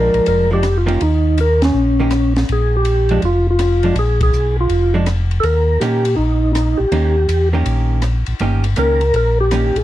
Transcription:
0.00 0.10 A#1 medium
0.00 0.46 F3 medium
0.00 0.47 G#3 medium
0.00 0.47 D4 medium
0.00 0.27 A#4 medium
0.14 0.21 A#1 soft
0.14 ride soft
0.26 0.97 F1 medium
0.26 0.51 A#4 loud
0.26 ride medium
0.51 0.62 F3 medium
0.51 0.63 G#3 medium
0.51 0.63 D4 medium
0.51 0.78 G4 medium
0.63 cross-stick medium
0.63 hi-hat pedal medium
0.63 ride medium
0.78 1.02 F4 medium
0.86 0.99 D#3 medium
0.86 0.99 A#3 medium
0.86 0.99 C#4 medium
0.86 0.99 G4 medium
0.86 ride soft
1.01 1.71 D#2 medium
1.01 1.40 D#4 medium
1.01 ride soft
1.38 1.62 A#4 loud
1.38 hi-hat pedal medium
1.38 ride medium
1.62 2.34 C#4 medium
1.62 snare medium
1.62 ride medium
1.74 2.45 A#1 medium
2.00 2.11 D#3 medium
2.00 2.11 A#3 medium
2.00 2.11 C#4 medium
2.00 2.12 G4 medium
2.11 cross-stick medium
2.11 hi-hat pedal medium
2.11 ride medium
2.36 snare soft
2.36 ride soft
2.49 3.19 A#1 medium
2.49 2.76 G#4 medium
2.49 ride medium
2.77 3.21 G4 medium
2.85 hi-hat pedal soft
2.85 ride medium
3.09 3.22 F3 medium
3.09 3.22 G#3 medium
3.09 3.22 D4 medium
3.09 ride soft
3.22 3.93 F1 medium
3.22 3.47 F4 medium
3.22 ride soft
3.50 3.95 F4 medium
3.59 cross-stick medium
3.59 hi-hat pedal medium
3.59 ride medium
3.83 3.95 F3 medium
3.83 3.96 G#3 medium
3.83 3.96 D4 medium
3.83 ride soft
3.95 4.30 A#1 medium
3.95 4.21 G#4 medium
3.95 ride medium
4.21 4.57 G#4 medium
4.21 kick medium
4.21 ride medium
4.33 4.68 B1 medium
4.33 hi-hat pedal medium
4.61 4.94 F4 medium
4.69 5.40 F1 medium
4.69 ride medium
4.94 5.06 F3 medium
4.94 5.06 G#3 medium
4.94 5.06 D4 medium
5.06 cross-stick medium
5.06 hi-hat pedal soft
5.06 ride medium
5.31 ride soft
5.40 5.78 D#2 medium
5.40 5.45 A4 medium
5.40 ride soft
5.44 5.83 A#4 medium
5.80 6.16 A#2 medium
5.80 6.04 D#3 medium
5.80 6.04 A#3 medium
5.80 6.04 C#4 medium
5.80 6.15 G4 medium
5.80 6.04 G4 medium
5.80 hi-hat pedal medium
5.80 ride medium
6.05 ride medium
6.16 6.76 A#1 medium
6.16 6.52 D#4 medium
6.53 6.80 D#4 medium
6.53 cross-stick medium
6.53 hi-hat pedal medium
6.53 ride medium
6.78 6.86 A#1 soft
6.78 7.49 G4 medium
6.92 7.27 D#2 medium
6.92 7.14 D#3 medium
6.92 7.15 A#3 medium
6.92 7.15 C#4 medium
6.92 7.15 G4 medium
6.92 ride medium
7.28 7.63 E2 medium
7.28 hi-hat pedal soft
7.28 ride medium
7.53 8.01 D#3 medium
7.53 8.01 A#3 medium
7.53 8.01 C#4 medium
7.53 8.01 G4 medium
7.66 8.24 A#1 medium
7.66 ride medium
8.02 cross-stick medium
8.02 hi-hat pedal soft
8.02 ride medium
8.26 8.34 A#1 soft
8.26 ride soft
8.39 8.75 G1 medium
8.39 8.63 D#3 medium
8.39 8.63 A#3 medium
8.39 8.63 C#4 medium
8.39 8.63 G4 medium
8.39 ride soft
8.64 ride soft
8.76 9.12 C#2 medium
8.76 8.99 D#3 soft
8.76 9.00 A#3 soft
8.76 9.00 C#4 soft
8.76 9.00 G4 soft
8.76 9.15 A#4 loud
8.76 hi-hat pedal medium
8.76 ride medium
9.01 ride soft
9.14 9.72 A#1 medium
9.14 9.38 A#4 loud
9.14 ride medium
9.41 9.78 G4 medium
9.51 9.74 D#3 soft
9.51 9.74 A#3 medium
9.51 9.74 C#4 medium
9.51 9.75 G4 medium
9.51 cross-stick medium
9.51 hi-hat pedal medium
9.51 ride medium
9.76 9.82 A#1 soft
9.76 9.84 G#4 medium
9.76 ride soft

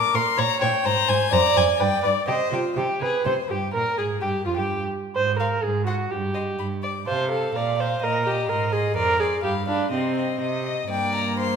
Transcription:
0.00 0.40 A#4 medium
0.00 0.17 D6 loud
0.14 0.22 A#2 medium
0.14 0.23 A#4 medium
0.14 0.40 C6 medium
0.38 0.46 A#2 medium
0.38 0.46 C#5 medium
0.38 0.86 C#5 medium
0.38 0.61 A#5 loud
0.61 0.70 A#2 medium
0.61 0.69 C#5 medium
0.61 0.87 G5 medium
0.85 0.93 G#2 medium
0.85 0.93 C5 medium
0.85 1.32 C5 medium
0.85 1.11 A#5 loud
1.08 1.17 G#2 medium
1.08 1.16 C5 medium
1.08 1.34 G#5 loud
1.32 1.40 F2 medium
1.32 1.40 C5 medium
1.32 1.79 D5 medium
1.32 1.58 A#5 loud
1.56 1.64 F2 medium
1.56 1.64 C5 medium
1.56 1.82 G#5 medium
1.79 1.88 G2 medium
1.79 1.87 B4 medium
1.79 2.27 D5 medium
1.79 2.03 G5 loud
2.03 2.12 G2 medium
2.03 2.11 B4 medium
2.03 2.28 D5 medium
2.28 2.36 C3 medium
2.28 2.36 G4 medium
2.28 2.76 C5 medium
2.28 2.52 D#5 medium
2.52 2.60 C3 medium
2.52 2.78 F4 medium
2.52 2.61 G4 medium
2.77 2.85 C3 medium
2.77 3.03 G4 medium
2.77 3.00 G4 medium
3.01 3.09 C3 medium
3.01 3.25 G#4 medium
3.01 3.26 B4 medium
3.25 3.34 C3 medium
3.25 3.33 C5 medium
3.25 3.52 C5 medium
3.25 3.34 C5 medium
3.50 3.73 G2 soft
3.50 3.58 G4 medium
3.50 3.74 G4 soft
3.50 3.73 G4 medium
3.73 3.82 A#2 medium
3.73 3.99 A#4 medium
3.73 3.98 A#4 medium
3.73 4.00 A#4 medium
3.98 4.21 G#2 soft
3.98 4.21 G#4 medium
3.98 4.06 G#4 soft
3.98 4.22 G#4 soft
4.22 4.30 G2 medium
4.22 4.44 G4 medium
4.22 4.30 G4 medium
4.22 4.47 G4 medium
4.45 4.59 F2 soft
4.45 4.50 F4 medium
4.45 4.59 F4 medium
4.45 4.57 F4 medium
4.57 4.81 G2 soft
4.57 4.80 G4 medium
4.57 4.81 G4 soft
4.57 4.81 G4 medium
5.16 5.55 G#2 medium
5.16 5.37 C5 medium
5.39 5.65 A#4 medium
5.39 5.47 F5 medium
5.39 5.48 C6 soft
5.63 6.03 G#2 medium
5.63 5.86 G#4 medium
5.87 6.12 F#4 medium
5.87 5.95 F#5 soft
5.87 5.94 C6 soft
6.11 6.51 G2 medium
6.11 6.83 G4 medium
6.34 6.42 D#5 soft
6.34 6.43 C6 soft
6.59 7.00 G2 soft
6.59 6.67 B5 soft
6.83 6.91 D5 soft
6.83 7.07 D6 soft
7.07 7.50 C3 medium
7.07 7.30 C5 medium
7.07 7.31 F5 medium
7.07 7.31 A5 soft
7.31 7.58 A4 medium
7.31 7.54 F5 soft
7.31 7.54 A5 soft
7.55 7.97 A#2 soft
7.55 7.82 D5 medium
7.55 7.78 F5 soft
7.55 7.77 A#5 soft
7.78 8.05 C5 medium
7.78 8.02 F5 soft
7.78 8.01 A#5 soft
8.02 8.44 A#2 medium
8.02 8.28 A#4 medium
8.02 8.26 D#5 medium
8.02 8.25 A#5 soft
8.25 8.51 G4 medium
8.25 8.49 D#5 soft
8.25 8.48 A#5 soft
8.49 8.91 G#2 medium
8.49 8.74 A#4 medium
8.49 8.72 D#5 soft
8.49 8.72 C6 medium
8.72 8.96 G#4 medium
8.72 8.96 D#5 medium
8.72 8.95 C6 medium
8.96 9.38 F2 medium
8.96 9.21 A#4 medium
8.96 9.19 D5 medium
8.96 9.19 C6 medium
9.20 9.43 G#4 medium
9.20 9.43 D5 medium
9.20 9.43 C6 soft
9.43 9.86 G2 medium
9.43 9.52 G4 medium
9.43 9.67 F5 medium
9.43 9.67 B5 medium
9.67 9.91 D4 medium
9.67 9.91 F5 soft
9.67 9.92 B5 soft
9.91 10.35 C3 medium
9.91 10.40 C4 medium
9.91 10.15 D#5 soft
9.91 10.16 C6 soft
10.16 10.40 D#5 soft
10.16 10.41 C6 soft
10.40 10.84 C3 soft
10.40 10.65 D#5 soft
10.40 10.87 D#5 medium
10.66 10.90 D#5 soft
10.90 11.56 G2 medium
10.90 11.56 A#3 medium
10.90 11.35 D5 medium
10.90 11.14 G5 medium
11.15 11.38 A#5 medium
11.39 11.56 C5 medium
11.39 11.56 C6 medium

